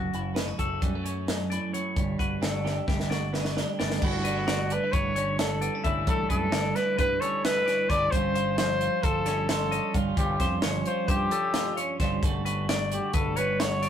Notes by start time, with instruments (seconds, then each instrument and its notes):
Already playing: clean electric guitar F#2 F#4
0.14 fingered electric bass F#1, clean electric guitar E4, closed hi-hat
0.35 clean electric guitar B3, snare, closed hi-hat
0.48 clean electric guitar C#4
0.59 fingered electric bass F#1, clean electric guitar F#3 F#4 A4, kick, closed hi-hat
0.82 fingered electric bass F#2, clean electric guitar G3 B4, kick, closed hi-hat
0.95 clean electric guitar A3
1.04 clean electric guitar C#4 C#5, closed hi-hat
1.28 clean electric guitar F#2 A3, snare, closed hi-hat
1.50 clean electric guitar E4 D5, closed hi-hat
1.73 clean electric guitar F#2 C#5, closed hi-hat
1.96 fingered electric bass G1, clean electric guitar G2, kick, closed hi-hat
2.19 fingered electric bass G1, clean electric guitar F#4 B4, kick, closed hi-hat
2.41 fingered electric bass G1, clean electric guitar D4 A4, snare, closed hi-hat
2.64 clean electric guitar D3 G4, snare
2.87 fingered electric bass G1, clean electric guitar G2 G4, kick, snare
3.00 snare
3.10 clean electric guitar F#4 D5, snare
3.33 clean electric guitar B3 B4, snare
3.44 clean electric guitar D4, snare
3.57 clean electric guitar D3 G4, snare
3.79 fingered electric bass G1, clean electric guitar B3 D5, snare
3.90 snare
4.02 fingered electric bass G1, clean electric guitar G2 A3 C#4 E4, trumpet F#4, kick, crash
4.24 clean electric guitar D4 B4, closed hi-hat
4.38 clean electric guitar E4
4.47 clean electric guitar D3 B3 D5, snare, closed hi-hat
4.70 clean electric guitar D4, trumpet B4, closed hi-hat
4.84 clean electric guitar E4
4.92 fingered electric bass G1, clean electric guitar B4, trumpet C#5, kick, closed hi-hat
5.16 clean electric guitar G2 C#4 C#5, closed hi-hat
5.39 clean electric guitar D4, trumpet A4, snare, closed hi-hat
5.50 clean electric guitar E4
5.61 clean electric guitar B3 D5, closed hi-hat
5.75 clean electric guitar C#4
5.84 fingered electric bass G1, clean electric guitar G2 A3 C#4 E4 E5, kick, closed hi-hat
6.07 fingered electric bass A1, clean electric guitar G2 A3 C#4 E4, trumpet A4, kick, closed hi-hat
6.29 fingered electric bass F#2, clean electric guitar E4 B4, trumpet A4, kick, closed hi-hat
6.52 fingered electric bass G1, clean electric guitar D3 B3 D5, snare, closed hi-hat
6.76 clean electric guitar E4, trumpet B4, snare, closed hi-hat
6.98 fingered electric bass G2, clean electric guitar B4, trumpet B4, kick, closed hi-hat
7.21 clean electric guitar G2 C#4 A4, trumpet C#5, closed hi-hat
7.45 clean electric guitar E4, trumpet B4, snare, closed hi-hat
7.66 clean electric guitar C#4 D5, snare, closed hi-hat
7.89 fingered electric bass G1, clean electric guitar G2 A3 C#4 B4, trumpet D5, kick, snare, closed hi-hat
7.93 clean electric guitar E4
8.11 fingered electric bass G1, clean electric guitar G2 G3, trumpet C5, kick, closed hi-hat
8.16 clean electric guitar C#4 F4
8.34 clean electric guitar F4 C5, closed hi-hat
8.58 clean electric guitar F3 C#4, trumpet C5, snare, closed hi-hat
8.81 clean electric guitar F4, closed hi-hat
9.03 fingered electric bass G1, trumpet A4, clean electric guitar C5, kick, closed hi-hat
9.26 clean electric guitar G2 C#4 C#5, snare, closed hi-hat
9.49 clean electric guitar F4, trumpet A4, snare, closed hi-hat
9.71 clean electric guitar C#4 D#5, closed hi-hat
9.94 fingered electric bass G1, clean electric guitar G2 G3 C#4 F4 F5, kick, closed hi-hat
10.17 fingered electric bass G1, clean electric guitar G2 G3 C#4 F4, trumpet G4, kick, closed hi-hat
10.39 fingered electric bass F2, clean electric guitar F4 C5, kick, snare, closed hi-hat
10.62 fingered electric bass G1, clean electric guitar F3 C#4 C#5, snare, closed hi-hat
10.86 clean electric guitar F4, trumpet C5, closed hi-hat
11.08 fingered electric bass G2, trumpet G4, clean electric guitar C5, kick, closed hi-hat
11.31 clean electric guitar G2 C#4 A4, closed hi-hat
11.54 clean electric guitar F4, snare, closed hi-hat
11.77 clean electric guitar C#4 C#5, closed hi-hat
12.00 fingered electric bass G1, clean electric guitar G2 G3 C#4 C5, kick, snare, closed hi-hat
12.04 clean electric guitar F4
12.23 fingered electric bass G1, clean electric guitar G2 A3 C#4 F#4, kick, closed hi-hat
12.45 clean electric guitar F#4 B4, closed hi-hat
12.69 clean electric guitar D3 D5, snare, closed hi-hat
12.92 clean electric guitar F#4, trumpet G4, closed hi-hat
13.13 fingered electric bass G1, trumpet A4, clean electric guitar B4, kick, closed hi-hat
13.36 clean electric guitar G2 C#4 C#5, trumpet B4, closed hi-hat
13.60 clean electric guitar F#4, trumpet C#5, snare, closed hi-hat
13.82 clean electric guitar C#4 D5, closed hi-hat